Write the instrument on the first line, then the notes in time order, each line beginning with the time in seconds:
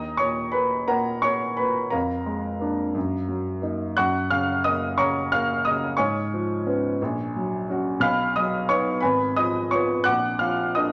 grand piano
Already playing: D#2 D#5 A#5 D#6
0.17 A#2 C#5 C#6
0.52 A#3 B4 B5
0.88 A#2 A#4 F#5 A#5
1.22 A#3 C#5 C#6
1.57 A#2 B4 B5
1.90 F2 A#4 F5 A#5
2.26 G#3
2.61 A#3 D4
2.95 F#2
3.28 F#3
3.62 A#3 D#4
3.97 F#2 F#5 C#6 F#6
4.30 C#3 F5 F6
4.64 A#3 D#5 D#6
4.98 C#3 C#5 A#5 C#6
5.32 A#3 F5 F6
5.65 C#3 D#5 D#6
5.97 G#2 C#5 G#5 C#6
6.34 F3
6.67 B3 C#4
7.02 A#1
7.36 F#3
7.70 C#4 F#4
8.00 B1 F5 B5 F6
8.36 F#3 D#5 D#6
8.69 B3 D#4 C#5 C#6
9.00 G#1 B4 G#5 B5
9.36 F3 D#5 D#6
9.71 B3 F4 C#5 C#6
10.04 A#1 F#5 D6 F#6
10.39 F3 F5 F6
10.75 A#3 D4 D#5 D#6